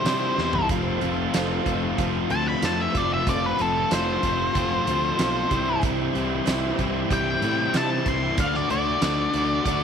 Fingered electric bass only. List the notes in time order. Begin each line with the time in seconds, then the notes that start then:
0.05 C3
0.38 E2
0.69 F1
1.02 F1
1.34 F1
1.66 F1
1.99 F1
2.30 D2
2.62 F2
2.95 F1
3.27 F1
3.59 F1
3.91 F1
4.23 F1
4.55 F1
4.87 D2
5.19 B1
5.51 C2
5.83 C2
6.15 C2
6.47 C2
6.79 C2
7.10 C2
7.42 A2
7.74 C3
8.06 C2
8.38 D2
8.70 D2
9.02 D2
9.34 D2
9.66 D2